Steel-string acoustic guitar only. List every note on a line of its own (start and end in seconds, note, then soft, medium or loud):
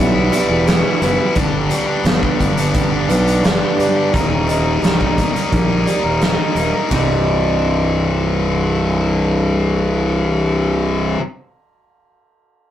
0.00 0.32 E2 medium
0.00 1.36 E3 medium
0.00 0.32 G3 medium
0.00 1.00 B3 medium
0.32 1.70 G3 medium
0.67 1.36 E4 medium
1.02 1.36 B3 medium
1.35 3.09 G2 medium
1.70 2.39 G3 medium
2.04 3.08 B3 medium
2.39 4.47 G3 medium
2.74 3.76 D4 medium
3.09 4.13 B3 medium
3.43 6.21 G4 medium
3.78 4.13 D4 medium
4.13 5.86 D#2 medium
4.47 5.16 D#3 medium
4.82 5.85 G3 medium
5.18 6.91 D#3 medium
5.52 6.55 A#3 medium
5.86 6.90 G3 medium
6.22 6.91 D#4 medium
6.56 6.91 A#3 medium
6.89 11.17 C2 medium
6.89 11.18 G2 medium
6.89 11.18 C3 medium
6.89 11.19 G3 medium
6.93 11.20 D#4 medium